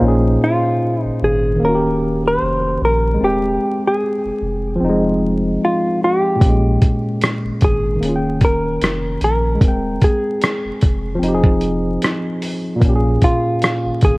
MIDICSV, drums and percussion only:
0, 0, Header, 1, 2, 480
1, 0, Start_track
1, 0, Tempo, 800000
1, 8, Time_signature, 4, 2, 24, 8
1, 8508, End_track
2, 0, Start_track
2, 0, Title_t, "Drums"
2, 3847, Note_on_c, 9, 36, 111
2, 3850, Note_on_c, 9, 42, 76
2, 3907, Note_off_c, 9, 36, 0
2, 3910, Note_off_c, 9, 42, 0
2, 4090, Note_on_c, 9, 42, 72
2, 4092, Note_on_c, 9, 36, 83
2, 4150, Note_off_c, 9, 42, 0
2, 4152, Note_off_c, 9, 36, 0
2, 4329, Note_on_c, 9, 42, 93
2, 4342, Note_on_c, 9, 37, 99
2, 4389, Note_off_c, 9, 42, 0
2, 4402, Note_off_c, 9, 37, 0
2, 4565, Note_on_c, 9, 42, 63
2, 4574, Note_on_c, 9, 36, 84
2, 4625, Note_off_c, 9, 42, 0
2, 4634, Note_off_c, 9, 36, 0
2, 4816, Note_on_c, 9, 42, 67
2, 4876, Note_off_c, 9, 42, 0
2, 5043, Note_on_c, 9, 42, 59
2, 5046, Note_on_c, 9, 36, 89
2, 5103, Note_off_c, 9, 42, 0
2, 5106, Note_off_c, 9, 36, 0
2, 5288, Note_on_c, 9, 42, 81
2, 5302, Note_on_c, 9, 37, 108
2, 5348, Note_off_c, 9, 42, 0
2, 5362, Note_off_c, 9, 37, 0
2, 5527, Note_on_c, 9, 42, 67
2, 5587, Note_off_c, 9, 42, 0
2, 5767, Note_on_c, 9, 36, 115
2, 5770, Note_on_c, 9, 42, 75
2, 5827, Note_off_c, 9, 36, 0
2, 5830, Note_off_c, 9, 42, 0
2, 6009, Note_on_c, 9, 42, 71
2, 6011, Note_on_c, 9, 36, 85
2, 6069, Note_off_c, 9, 42, 0
2, 6071, Note_off_c, 9, 36, 0
2, 6248, Note_on_c, 9, 42, 88
2, 6262, Note_on_c, 9, 37, 107
2, 6308, Note_off_c, 9, 42, 0
2, 6322, Note_off_c, 9, 37, 0
2, 6488, Note_on_c, 9, 42, 61
2, 6495, Note_on_c, 9, 36, 85
2, 6548, Note_off_c, 9, 42, 0
2, 6555, Note_off_c, 9, 36, 0
2, 6738, Note_on_c, 9, 42, 65
2, 6798, Note_off_c, 9, 42, 0
2, 6862, Note_on_c, 9, 36, 90
2, 6922, Note_off_c, 9, 36, 0
2, 6966, Note_on_c, 9, 42, 55
2, 7026, Note_off_c, 9, 42, 0
2, 7211, Note_on_c, 9, 42, 83
2, 7225, Note_on_c, 9, 37, 103
2, 7271, Note_off_c, 9, 42, 0
2, 7285, Note_off_c, 9, 37, 0
2, 7451, Note_on_c, 9, 46, 49
2, 7511, Note_off_c, 9, 46, 0
2, 7690, Note_on_c, 9, 36, 120
2, 7692, Note_on_c, 9, 42, 78
2, 7750, Note_off_c, 9, 36, 0
2, 7752, Note_off_c, 9, 42, 0
2, 7931, Note_on_c, 9, 42, 71
2, 7934, Note_on_c, 9, 36, 83
2, 7991, Note_off_c, 9, 42, 0
2, 7994, Note_off_c, 9, 36, 0
2, 8171, Note_on_c, 9, 42, 87
2, 8185, Note_on_c, 9, 37, 113
2, 8231, Note_off_c, 9, 42, 0
2, 8245, Note_off_c, 9, 37, 0
2, 8408, Note_on_c, 9, 42, 63
2, 8416, Note_on_c, 9, 36, 86
2, 8468, Note_off_c, 9, 42, 0
2, 8476, Note_off_c, 9, 36, 0
2, 8508, End_track
0, 0, End_of_file